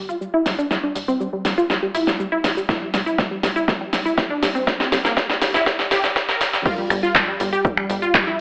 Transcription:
0.00 0.12 G1 medium
0.09 0.17 F4 medium
0.09 cabasa soft
0.21 0.29 G3 medium
0.21 cabasa soft
0.34 0.42 E4 loud
0.46 0.61 G1 medium
0.46 0.54 G3 medium
0.46 snare medium
0.46 open hi-hat loud
0.46 cabasa medium
0.59 0.66 D4 medium
0.59 cabasa soft
0.71 0.79 G3 medium
0.71 snare medium
0.71 cabasa soft
0.83 0.91 D4 medium
0.95 1.11 G1 loud
0.95 1.04 G3 medium
0.95 open hi-hat loud
0.95 cabasa medium
1.08 1.16 C4 medium
1.08 cabasa soft
1.20 1.29 G3 medium
1.20 cabasa soft
1.33 1.41 G3 medium
1.45 1.61 G1 medium
1.45 1.53 G3 medium
1.45 snare medium
1.45 open hi-hat loud
1.45 cabasa medium
1.58 1.66 F4 loud
1.58 cabasa soft
1.70 1.78 G3 medium
1.70 snare medium
1.70 cabasa soft
1.83 1.90 G3 medium
1.95 2.10 G1 medium
1.95 2.03 E4 medium
1.95 open hi-hat loud
1.95 cabasa medium
2.07 2.15 G3 medium
2.07 snare medium
2.07 cabasa soft
2.19 2.28 G3 medium
2.19 cabasa soft
2.32 2.40 E4 loud
2.44 2.60 G1 medium
2.44 2.52 G3 medium
2.44 snare medium
2.44 open hi-hat loud
2.44 cabasa medium
2.57 2.65 G3 medium
2.57 cabasa soft
2.69 2.77 E4 loud
2.69 kick loud
2.69 snare medium
2.69 cabasa soft
2.82 2.90 G3 medium
2.94 3.09 C2 loud
2.94 3.02 G3 medium
2.94 snare medium
2.94 open hi-hat loud
2.94 cabasa medium
3.06 3.14 E4 medium
3.06 cabasa soft
3.18 3.27 G3 medium
3.18 kick loud
3.18 snare medium
3.18 cabasa soft
3.31 3.39 G3 medium
3.43 3.59 C2 medium
3.43 3.52 G3 medium
3.43 snare medium
3.43 open hi-hat loud
3.43 cabasa medium
3.56 3.64 E4 medium
3.56 cabasa soft
3.68 3.76 G3 medium
3.68 kick loud
3.68 snare medium
3.68 cabasa soft
3.81 3.89 G3 medium
3.93 4.09 C2 medium
3.93 4.01 G3 medium
3.93 snare medium
3.93 open hi-hat loud
3.93 cabasa medium
4.05 4.13 E4 medium
4.05 cabasa soft
4.18 4.26 G3 medium
4.18 kick loud
4.18 snare medium
4.18 cabasa soft
4.30 4.38 D4 loud
4.42 4.58 C2 medium
4.42 4.51 G3 medium
4.42 snare medium
4.42 open hi-hat loud
4.42 cabasa medium
4.55 4.63 C4 medium
4.55 cabasa soft
4.67 4.76 G3 medium
4.67 kick loud
4.67 snare medium
4.67 cabasa soft
4.80 4.88 C4 medium
4.80 snare medium
4.92 5.08 C2 loud
4.92 5.00 G3 medium
4.92 snare medium
4.92 open hi-hat loud
4.92 cabasa medium
5.05 5.13 A#3 medium
5.05 snare medium
5.05 cabasa soft
5.17 5.25 G3 medium
5.17 kick loud
5.17 snare loud
5.17 cabasa soft
5.29 5.37 G3 medium
5.29 snare medium
5.42 5.57 C2 medium
5.42 5.50 G3 medium
5.42 snare loud
5.42 open hi-hat loud
5.42 cabasa medium
5.54 5.62 E4 loud
5.54 snare medium
5.54 cabasa soft
5.66 5.75 G3 medium
5.66 kick loud
5.66 snare loud
5.66 cabasa soft
5.79 5.87 G3 medium
5.79 snare medium
5.91 6.07 C2 medium
5.91 6.00 G4 loud
5.91 snare loud
5.91 open hi-hat loud
5.91 cabasa medium
6.04 6.12 G3 medium
6.04 snare medium
6.04 cabasa soft
6.16 6.24 G3 medium
6.16 kick loud
6.16 snare loud
6.16 cabasa soft
6.29 6.37 A#4 loud
6.29 snare loud
6.41 6.57 C2 medium
6.41 6.49 G3 medium
6.41 snare loud
6.41 open hi-hat loud
6.41 cabasa medium
6.53 6.62 G3 medium
6.53 snare loud
6.53 cabasa soft
6.66 6.74 F4 loud
6.66 kick loud
6.66 crash loud
6.66 cabasa soft
6.78 6.86 G3 medium
6.90 7.06 G1 loud
6.90 6.99 G3 medium
6.90 finger snap medium
6.90 open hi-hat loud
6.90 cabasa medium
7.03 7.11 F4 loud
7.03 cabasa soft
7.15 7.23 G3 medium
7.15 kick loud
7.15 clap loud
7.15 cabasa soft
7.28 7.36 G3 medium
7.40 7.56 G1 medium
7.40 7.48 G3 medium
7.40 open hi-hat loud
7.40 cabasa medium
7.53 7.61 G4 loud
7.53 cabasa soft
7.65 7.73 G3 medium
7.65 kick loud
7.65 cabasa soft
7.77 7.85 G3 medium
7.77 finger snap medium
7.90 8.05 G1 medium
7.90 7.98 G3 medium
7.90 open hi-hat loud
7.90 cabasa medium
8.02 8.10 F4 medium
8.02 cabasa soft
8.14 8.23 G3 medium
8.14 kick loud
8.14 clap loud
8.14 cabasa soft
8.27 8.35 E4 loud

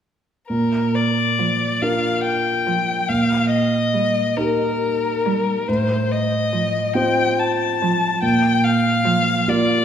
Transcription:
0.49 1.78 A#2 soft
0.49 0.96 A#4 soft
0.94 1.83 D5 soft
1.39 1.71 F3 soft
1.82 3.06 D4 soft
1.82 3.06 F4 soft
1.82 3.06 A#4 soft
1.82 2.23 F5 medium
2.24 3.10 G5 medium
2.67 2.98 F3 soft
3.08 4.34 A#2 soft
3.08 3.50 F5 medium
3.51 4.39 D#5 medium
3.94 4.26 G3 soft
4.37 5.64 D#4 soft
4.37 5.64 G4 soft
4.37 5.70 A#4 soft
4.37 5.64 A#4 soft
5.26 5.57 G3 soft
5.68 6.92 A2 soft
5.68 6.13 C5 medium
6.11 6.96 D#5 medium
6.53 6.85 F3 soft
6.95 8.18 C4 soft
6.95 8.18 F4 soft
6.95 8.18 C5 soft
6.95 7.41 G5 medium
7.39 8.22 A5 medium
7.82 8.12 F3 soft
8.22 9.44 A#2 soft
8.22 8.65 G5 medium
8.64 9.51 F5 medium
9.05 9.37 F3 soft
9.48 9.85 A#3 soft
9.48 9.85 F4 soft
9.48 9.85 D5 soft
9.48 9.85 D5 medium

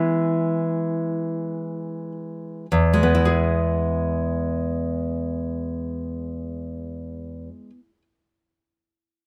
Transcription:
0.00 2.65 E3 soft
0.00 2.66 G#3 soft
0.00 2.67 B3 soft
0.00 2.11 E4 soft
2.72 7.48 E2 soft
2.94 7.70 G#3 soft
3.03 7.79 B3 soft
3.15 7.91 E4 soft
3.25 8.02 G#4 soft

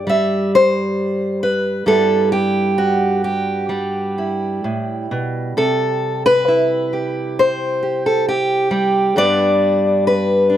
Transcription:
0.00 1.85 G2 medium
0.00 1.82 G4 soft
0.07 1.86 G3 medium
0.07 0.53 E5 medium
0.55 1.43 C5 loud
1.43 1.87 B4 medium
1.86 4.63 G2 medium
1.86 3.68 G3 soft
1.86 5.57 B3 soft
1.86 2.78 E4 soft
1.86 2.32 A4 loud
2.32 3.23 G4 medium
2.78 4.18 F#4 medium
3.24 5.57 G4 medium
3.69 8.70 G3 medium
4.18 5.53 E4 soft
4.64 5.11 A2 medium
5.11 5.57 B2 medium
5.57 9.12 C3 medium
5.57 6.25 A4 loud
6.26 7.39 B4 medium
6.48 9.12 E4 soft
6.93 7.82 G4 soft
7.39 8.06 C5 medium
7.83 8.28 G4 soft
8.06 8.28 A4 medium
8.28 9.17 G4 medium
8.71 9.16 G3 medium
9.16 10.57 G2 medium
9.16 10.57 G3 medium
9.16 10.57 B3 soft
9.16 10.49 D4 soft
9.16 10.06 D5 loud
10.07 10.57 B4 medium
10.50 10.57 D4 soft

